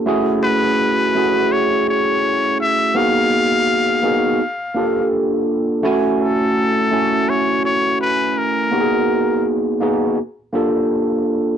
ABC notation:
X:1
M:4/4
L:1/8
Q:"Swing 16ths" 1/4=83
K:F#dor
V:1 name="Muted trumpet"
z B3 c c2 e | ^e6 z2 | z A3 c c B ^A- | ^A2 z6 |]
V:2 name="Tine electric piano"
[A,CEFG]2 z [A,CEFG]3 z2 | [^A,B,DFG]2 z [A,B,DFG] z [_B,=D=F=G=A]2 z | [A,CEFg]2 z [A,CEFg]3 z2 | [^A,B,DF=G^G]2 z [A,B,DFG] z [_B,=D=F=G=A]2 z |]